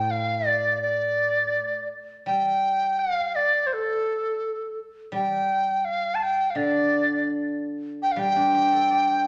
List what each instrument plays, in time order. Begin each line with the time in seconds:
Already playing: guzheng A2, dizi G5
0.11 dizi F5
0.47 dizi D5
0.82 dizi D5
2.26 guzheng G3, dizi G5
2.99 dizi F5
3.35 dizi D5
3.67 dizi C5
3.73 dizi A4
5.12 guzheng G3, dizi G5
5.85 dizi F5
6.15 dizi A5
6.23 dizi G5
6.50 dizi F5
6.55 guzheng D3, dizi D5
8.03 dizi G5
8.12 dizi F5
8.16 guzheng G3, dizi G5
8.36 guzheng D4
8.54 guzheng G4
8.72 guzheng A4
8.91 guzheng D5